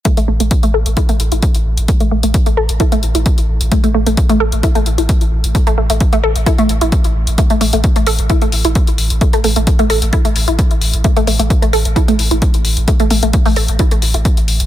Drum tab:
HH |xx-xxx-xxxxxxx-x|xx-xxx-xxxxxxx-x|xx-xxx-xxxxxxx-x|xx-xxx-xxxxxxx-x|
BD |o---o---o---o---|o---o---o---o---|o---o---o---o---|o---o---o---o---|

HH |xxoxxxoxxxoxxxox|xxoxxxoxxxoxxxox|xxoxxxoxxxoxxxox|xxoxxooxxxoxxxox|
BD |o---o---o---o---|o---o---o---o---|o---o---o---o---|o---o---o---o---|